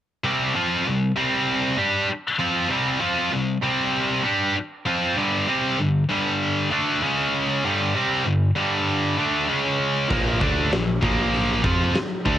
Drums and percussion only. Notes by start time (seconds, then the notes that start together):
10.10 kick, open hi-hat
10.41 kick
10.72 snare, open hi-hat
11.02 kick
11.34 open hi-hat
11.64 kick
11.94 snare, open hi-hat
12.26 kick